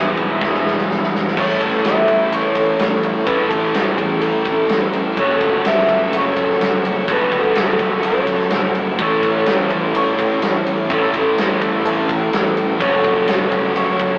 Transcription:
Already playing: E1 E2 B2 E3 G#3 B3 E4 G#4 E5 B5 E6
0.17 B1 B2 E3, kick, open hi-hat
0.32 tambourine
0.41 E1 E2 B2 E3 G#4, kick, snare
0.54 snare
0.66 E1 B4, snare, tambourine
0.78 snare
0.88 E1 E2 B2 E3, snare, tambourine
1.02 snare, tambourine
1.12 E1 B2 E3 G#4, snare, tambourine
1.27 snare
1.36 A1 A2 E3 A3 C#4 E4 A4 C#5 E5 C#6 E6, kick, crash
1.40 A4
1.61 A1, kick, ride
1.84 A1 B4, snare, ride, tambourine
1.88 E5
2.08 A1, kick, ride, tambourine
2.31 A1 A4 C#5, ride, tambourine
2.55 A1 A2 E3 A3 A4, kick, ride, tambourine
2.78 A1 A2 E3 A3, snare, ride, tambourine
3.03 A1 F#4, ride, tambourine
3.25 A1 A2 E3 A3 C#4 E4 A4 B4, kick, ride
3.49 A1 A4, kick, ride
3.74 A1 B4, snare, ride, tambourine
3.97 A1 G#4, kick, ride, tambourine
4.21 A1 A4, ride, tambourine
4.45 A2 E3 A3 A4, kick, ride, tambourine
4.68 A1 A2 E3 A3, snare, ride, tambourine
4.93 A1 F#4, ride, tambourine
5.17 F#1 F#2 C#3 F#3 C#4 F#4 A4 C#5 F#5, kick, ride
5.21 A4
5.41 F#1, kick, ride
5.65 F#1 B4 E5, snare, ride, tambourine
5.88 F#1, kick, ride, tambourine
6.11 F#1 A4, ride, tambourine
6.17 C#5
6.35 F#1 F#2 C#3 F#3 A4, kick, ride, tambourine
6.50 snare
6.59 F#1 F#2 C#3 F#3, snare, ride, tambourine
6.83 F#1 F#4, ride, tambourine
7.06 F#1 F#2 C#3 F#3 C#4 A4, kick, ride, tambourine
7.11 F#4 A4 B4
7.32 F#1, kick, ride
7.56 F#1, snare, ride, tambourine
7.60 A4
7.79 F#1, kick, ride, tambourine
8.03 F#1 A4 C#5, ride, tambourine
8.26 F#2 C#3 F#3 A4, kick, ride, tambourine
8.40 snare
8.51 F#1 F#2 C#3 F#3, snare, ride, tambourine
8.75 F#1 F#4, ride, tambourine
8.98 A1 A2 E3 A3 C#4 E4 A4 C#5 E5, kick, ride
9.23 A1, kick, ride
9.46 A1 B4, snare, ride, tambourine
9.70 A1, kick, ride, tambourine
9.95 A1 A4 C#5, ride, tambourine
10.17 A1 A2 E3 A3 A4, kick, ride, tambourine
10.42 A1 A2 E3 A3, snare, ride, tambourine
10.67 A1 F#4, ride, tambourine
10.89 A1 A2 E3 A3 C#4 E4 A4, kick, ride
10.94 A4
11.14 A1, kick, ride
11.37 A1, snare, ride, tambourine
11.61 A1, kick, ride, tambourine
11.85 A1 A4, ride, tambourine
12.09 A2 E3 A3 A4, kick, ride, tambourine
12.31 A1 A2 E3 A3, snare, ride, tambourine
12.57 A1 F#4, ride, tambourine
12.79 F#1 F#2 C#3 F#3 C#4 F#4 A4 C#5 F#5 C#6 E6, kick, ride
12.83 F#3
13.04 F#1, kick, ride
13.28 F#1 B4, snare, ride, tambourine
13.52 F#1, kick, ride, tambourine
13.76 F#1 A4 C#5, ride, tambourine
13.99 F#1 F#2 C#3 F#3 A4, kick, ride, tambourine

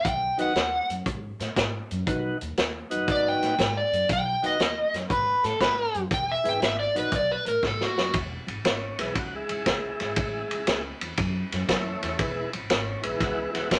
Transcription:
0.05 B1 G5, kick, closed hi-hat
0.38 D#2 D#3 F#3 B3 D#4 F#4, closed hi-hat
0.42 F#5
0.55 D#2, snare, closed hi-hat
0.89 F#2, closed hi-hat
1.06 G#2, kick, closed hi-hat
1.40 A2, snare, closed hi-hat
1.56 G#2, kick, snare, closed hi-hat
1.91 F#2, closed hi-hat
2.06 B1 D#3 F#3 B3 D#4 F#4, kick, closed hi-hat
2.41 D#2, closed hi-hat
2.57 D#2, snare, closed hi-hat
2.90 F#2 D#3 F#3 B3 D#4 F#4, closed hi-hat
3.08 G#2 D5, kick, closed hi-hat
3.28 G5
3.42 A2, snare, closed hi-hat
3.59 G#2, kick, snare, closed hi-hat
3.77 D5
3.92 F#2, closed hi-hat
4.09 B1 G5, kick, closed hi-hat
4.42 D#2 D#3 F#3 B3 D#4 F#4, closed hi-hat
4.46 D#5
4.59 D#2, snare, closed hi-hat
4.93 F#2, snare, closed hi-hat
5.10 G#2 B4, kick, closed hi-hat
5.44 A2 A4, snare, closed hi-hat
5.60 G#2 B4, kick, snare, closed hi-hat
5.94 F#2, closed hi-hat
6.11 E1 G5, kick, closed hi-hat
6.32 E5
6.44 G#1 E3 G#3 B3 E4 G#4, closed hi-hat
6.49 G5
6.61 G#1 E5, snare, closed hi-hat
6.80 D5
6.95 A#1 D#3 F#3 B3 D#4 F#4, closed hi-hat
6.99 B4
7.12 B1 D5, kick, closed hi-hat
7.32 B4
7.45 A2 A#4, closed hi-hat
7.63 G#2, kick, snare
7.67 A4
7.81 F#4, snare
7.96 F#2, snare
8.13 E1, kick, ride
8.47 G#1, ride
8.64 G#1 C#4, snare, ride
8.98 B1 E3 G#3 B3 E4, snare, ride
9.15 C#2 F#4, kick, ride
9.35 G#3 E4
9.49 C#2, ride
9.66 C#2, kick, snare, ride
10.00 G#1, snare, ride
10.16 A1, kick, ride
10.51 C#2, ride
10.67 C#2, snare, ride
11.01 E2, ride
11.17 F#2, kick, ride
11.52 F#2, snare, ride
11.67 F#2 E3 A3 C#4 E4, kick, snare, ride
12.03 E2, snare, ride
12.18 E1 E3 G#3 B3 E4, kick, ride
12.53 G#1, ride
12.70 G#1, snare, ride
12.74 C#4
13.02 B1 E3 G#3 B3 E4, ride
13.20 C#2 F#4, kick, snare, ride
13.41 E4
13.53 C#2 E3 G#3 B3 F#4, snare, ride
13.71 C#2, kick, snare, ride

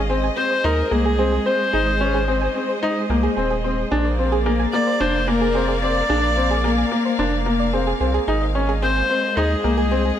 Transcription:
Already playing: G#1 G#3 G#4 D#5 F5
0.10 C4 G#4
0.21 C5 G#5
0.37 C4 C5
0.51 C5
0.64 D#2 D#4 A#4 C5
0.91 C2 A#3 G#4 G#5
1.05 G#4
1.19 C4 G#4
1.32 G#4
1.46 C4 C5
1.73 G#1 D#4 G#4
1.87 D#5
2.01 C#4
2.14 G#4
2.28 C4 G#4
2.41 G#5
2.55 C4
2.69 C5
2.82 D#4 C5
3.10 C2 A#3 G#5
3.23 G#4
3.37 D#1 C4 G#4
3.50 G#4
3.64 C4 C5
3.91 A#1 A#3 D4 G#4
4.02 A#4 D5
4.10 D5
4.17 C4 F5
4.32 G#4
4.46 A#3 G#4
4.59 G#5
4.73 A#3 D5
4.87 C5
5.00 F1 D4 C5
5.28 A#3 A#4 G#5
5.41 G#4
5.55 C4 G#4
5.68 G#4
5.82 C4 C5 D5
6.09 A#1 D4 G#4
6.23 D5
6.37 C4
6.51 G#4
6.64 A#3 G#4
6.78 G#5
6.92 A#3
7.05 C5
7.19 F1 D4 C5
7.46 A#3
7.60 D5
7.73 C4 G#4
7.87 G#4
8.00 C2 C4 G#4
8.14 G#4
8.28 G#1 G#3 D#4 G#4
8.41 D#5
8.53 C#4 G#4
8.58 D#5
8.69 G#4
8.82 C4 G#4 C5
8.96 G#5
9.10 C4
9.23 C5
9.37 D#2 D#4 G#4 C5
9.64 C2 A#3 G#5
9.78 G#4
9.91 C4 G#4
10.05 G#4

